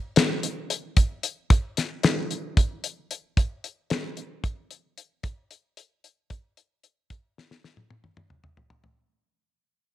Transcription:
0.16 snare, closed hi-hat
0.43 closed hi-hat
0.70 closed hi-hat
0.97 kick, closed hi-hat
1.23 closed hi-hat
1.50 kick, closed hi-hat
1.77 snare, closed hi-hat
2.03 snare, closed hi-hat
2.31 closed hi-hat
2.57 kick, closed hi-hat
2.84 closed hi-hat
3.11 closed hi-hat
3.37 kick, closed hi-hat
3.64 closed hi-hat
3.90 snare, closed hi-hat
4.17 closed hi-hat
4.44 kick, closed hi-hat
4.71 closed hi-hat
4.98 closed hi-hat
5.23 kick, closed hi-hat
5.51 closed hi-hat
5.77 closed hi-hat
6.04 closed hi-hat
6.30 kick, closed hi-hat
6.57 closed hi-hat
6.84 closed hi-hat
7.10 kick, closed hi-hat
7.38 snare
7.51 snare
7.64 snare
7.77 high tom
7.91 high tom
8.04 mid tom
8.17 mid tom
8.30 mid tom
8.44 mid tom
8.57 floor tom
8.70 floor tom
8.84 floor tom

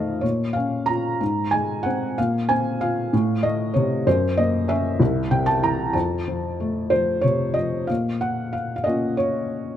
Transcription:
Already playing: F2 D#3 A3 D#5 F5 A5
0.21 A#2 C#5
0.53 C#4 F5
0.86 F4 A#5
1.21 G#2
1.51 G#3 G#5
1.83 C4 F#5
2.18 A#2 F5
2.49 C4 G#5
2.81 F4 F5
3.13 A2
3.43 A3 D#5
3.74 C3 C#5
4.07 F#2 C5
4.37 A#3 D#5
4.68 C#4 E5
5.00 C2
5.31 C3 G5
5.46 A5
5.62 E3 A#5
5.93 F2 A5
6.28 F3
6.60 A3
6.90 F3 C5
7.21 C3 C#5
7.54 F3 D#5
7.87 A#2 F5
8.21 F#5
8.53 F5
8.76 F5
8.84 A#3 C#4 F4 D#5
9.17 C#5

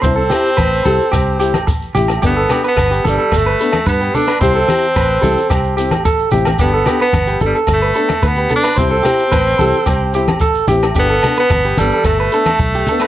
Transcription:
0.02 C2 C4 C5, kick, closed hi-hat, shekere
0.06 E4, muted steel-string acoustic guitar stroke
0.16 A4
0.29 G4, cross-stick, closed hi-hat, low conga, low agogo, shekere
0.34 E4
0.46 closed hi-hat, shekere
0.57 A1 B4, kick, cross-stick, closed hi-hat, high conga, low agogo, shekere
0.73 shekere
0.85 C2 E4 G4 A4, closed hi-hat, high conga, low conga, shekere
1.00 closed hi-hat
1.12 C2 G4, kick, cross-stick, closed hi-hat, low agogo, shekere
1.40 E4 G4, closed hi-hat, shekere
1.54 A1, cross-stick, closed hi-hat, high conga, low agogo
1.67 muted clean electric guitar stroke, kick, closed hi-hat, shekere
1.82 shekere
1.95 A1 E4 G4, closed hi-hat, low conga, shekere
2.08 cross-stick, closed hi-hat, low agogo, shekere
2.22 G1 G3 B3 D4 G4 A4, kick, closed hi-hat, shekere
2.37 A4
2.49 B3 D4 G4 A4, cross-stick, closed hi-hat, low conga, low agogo, shekere
2.64 B4, closed hi-hat, shekere
2.68 B3
2.77 G1, kick, cross-stick, closed hi-hat, high conga, low agogo, shekere
2.91 G4, shekere
3.04 G1 B3 D4 A4, closed hi-hat, high conga, low conga, shekere
3.09 G3
3.18 A4, closed hi-hat
3.32 G1, kick, cross-stick, closed hi-hat, low agogo, shekere
3.37 A3
3.46 B4
3.59 B3 D4 A4, closed hi-hat, shekere
3.72 cross-stick, closed hi-hat, high conga, low agogo
3.86 G2 B3 B4, kick, closed hi-hat, shekere
4.01 G4, shekere
4.14 B3 D4 A4, closed hi-hat, low conga, shekere
4.28 B4, cross-stick, closed hi-hat, low agogo, shekere
4.41 C2 G3 C4 E4 G4 C5, kick, closed hi-hat, shekere
4.55 A4
4.68 C4 E4 G4, muted clean electric guitar stroke, cross-stick, closed hi-hat, high conga, low agogo, shekere
4.83 closed hi-hat
4.96 A1 B4, kick, cross-stick, closed hi-hat, low agogo, shekere
5.21 C2 C4 E4 G4 A4, closed hi-hat, high conga, low conga, shekere
5.38 closed hi-hat, shekere
5.50 C2 G4, kick, cross-stick, closed hi-hat, low agogo, shekere
5.64 shekere
5.77 C4 E4 G4, closed hi-hat, shekere
5.91 A1, cross-stick, closed hi-hat, high conga, low agogo
6.05 A4, kick, closed hi-hat, shekere
6.19 shekere
6.31 A1 C4 E4 G4, closed hi-hat, low conga, shekere
6.45 cross-stick, closed hi-hat, high conga, low agogo, shekere
6.59 G1 G3 B3 D4 G4, kick, closed hi-hat, shekere
6.63 A4
6.74 A4
6.86 B3 D4 G4 A4, cross-stick, closed hi-hat, low conga, low agogo, shekere
7.01 B3 B4, closed hi-hat, shekere
7.13 G1, kick, cross-stick, closed hi-hat, high conga, low agogo, shekere
7.27 G4, shekere
7.40 G1 B3 D4 A4, closed hi-hat, high conga, low conga, shekere
7.46 G3
7.55 A4, closed hi-hat
7.67 G1, kick, cross-stick, closed hi-hat, low agogo, shekere
7.73 A3
7.82 B4
7.94 B3 D4 A4, closed hi-hat, shekere
8.09 cross-stick, closed hi-hat, high conga, low agogo
8.22 D2 B4, kick, closed hi-hat, shekere
8.28 B3
8.36 G4, shekere
8.49 B3 D4 A4, closed hi-hat, low conga, shekere
8.55 D4
8.63 B4, cross-stick, closed hi-hat, low agogo, shekere
8.76 C2 G3 C4 E4 C5, kick, closed hi-hat, shekere
8.80 G4
8.91 A4
9.03 E4 G4, cross-stick, closed hi-hat, low conga, low agogo, shekere
9.08 C4
9.19 closed hi-hat, shekere
9.32 A1 B4, kick, cross-stick, closed hi-hat, high conga, low agogo, shekere
9.47 shekere
9.59 C2 C4 E4 G4 A4, closed hi-hat, high conga, low conga, shekere
9.74 closed hi-hat
9.86 C2 G4, kick, cross-stick, closed hi-hat, low agogo, shekere
10.14 C4 E4 G4, closed hi-hat, shekere
10.28 A1, cross-stick, closed hi-hat, high conga, low agogo
10.40 A4, kick, closed hi-hat, shekere
10.55 shekere
10.68 A1 C4 E4 G4, closed hi-hat, low conga, shekere
10.82 cross-stick, closed hi-hat, low agogo, shekere
10.95 G1 G3 D4 G4 A4, muted steel-string acoustic guitar stroke, kick, closed hi-hat, shekere
10.99 B3
11.10 A4
11.22 A4, cross-stick, closed hi-hat, low conga, low agogo, shekere
11.26 B3 D4
11.36 B3 B4, closed hi-hat, shekere
11.50 G1, kick, cross-stick, closed hi-hat, high conga, low agogo, shekere
11.63 G4, shekere
11.77 G1 G3 D4 A4, closed hi-hat, high conga, low conga, shekere
11.81 B3
11.91 A4, closed hi-hat
12.04 G1 A3, kick, cross-stick, closed hi-hat, low agogo, shekere
12.20 B4
12.32 B3 D4 A4, closed hi-hat, shekere
12.46 cross-stick, closed hi-hat, high conga, low agogo
12.59 B1, kick, closed hi-hat, shekere
12.74 G4, shekere
12.87 D4 A4, closed hi-hat, low conga, shekere
12.91 B3
13.00 B4, cross-stick, closed hi-hat, low agogo, shekere

